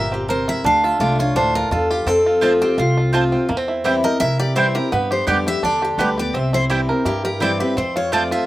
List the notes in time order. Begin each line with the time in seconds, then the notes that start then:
Already playing: G1 A#2 G4 A#4 E5
0.12 C4 G4
0.29 C3 A#4 C5
0.48 E4 E5
0.64 D2 D3 D4 F5
0.84 F4 E5
1.00 C2 D3 A3 D4 F4 D5
1.19 D4 F4 C#5
1.35 D2 A2 D4 C5
1.55 F4 A#4
1.71 E2 G2 F4 A4
1.90 F4 G4
2.06 F2 C4 A4
2.26 F4
2.41 F3 A3 C4 F4 C5 A5
2.61 C4 F4 G4
2.78 C2 C3 F4
2.97 F4
3.13 F3 A3 C4 F4 C5 A5
3.32 C4 F4
3.49 E2 A#3
3.57 C4
3.68 E4
3.84 E3 G3 C4 E4 G4 C5 G5
4.03 C4 E4 A#4 D#5
4.20 C3 E4 E5
4.39 G4 D5
4.55 E3 G3 C4 E4 C5 G5
4.75 C4 E4 G4 A#4
4.92 G2 B3 B4
5.11 G4 C5
5.27 F2 D3 G3 B3 G4 D5 G5
5.47 B3 G4 E5
5.63 E2 D3 D4 D5
5.82 G4
5.98 D2 D3 G3 B3 G4 B4 D5 G5
6.18 B3 G4 D5
6.34 C2 C3 C4 E5
6.53 E4 C5
6.70 E3 G3 C4 E4 G4 C5 G5
6.89 C4 E4 A#4
7.05 G2 E4 G4
7.25 G4 A#4
7.40 E3 G3 C4 E4 C5 D5 G5
7.60 C4 E4 G4 B4
7.77 F2 C4 C5
7.96 F4 C#5
8.12 F3 A3 C4 F4 C5 D5 A5
8.31 F4 E5